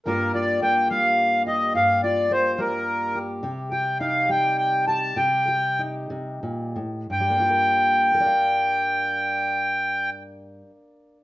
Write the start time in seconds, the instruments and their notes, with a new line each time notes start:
0.06 steel-string acoustic guitar G2 G3 A#3 F4 G4, accordion A#4
0.34 steel-string acoustic guitar F4, accordion D5
0.62 steel-string acoustic guitar A#3, accordion G5
0.90 steel-string acoustic guitar G3, accordion F5
1.47 steel-string acoustic guitar G4, accordion D#5
1.74 steel-string acoustic guitar G2 G4, accordion F5
2.03 steel-string acoustic guitar F4, accordion D5
2.31 steel-string acoustic guitar A#3, accordion C5
2.58 steel-string acoustic guitar G3, accordion A#4
3.15 steel-string acoustic guitar G4
3.43 steel-string acoustic guitar C3 G4
3.71 steel-string acoustic guitar G4, accordion G5
4.00 steel-string acoustic guitar D#4, accordion F5
4.29 steel-string acoustic guitar G3, accordion G5
4.58 accordion G5
4.87 steel-string acoustic guitar G4, accordion A5
5.16 steel-string acoustic guitar C3 G4, accordion G5
5.48 steel-string acoustic guitar G4
5.79 steel-string acoustic guitar D#4
6.10 steel-string acoustic guitar C3
6.43 steel-string acoustic guitar A#2
6.76 steel-string acoustic guitar A2
7.10 steel-string acoustic guitar G2, accordion G5
7.20 steel-string acoustic guitar G3
7.30 steel-string acoustic guitar A#3
7.40 steel-string acoustic guitar F4
7.50 steel-string acoustic guitar A#4
8.14 steel-string acoustic guitar A#4
8.20 steel-string acoustic guitar D5
8.26 steel-string acoustic guitar F5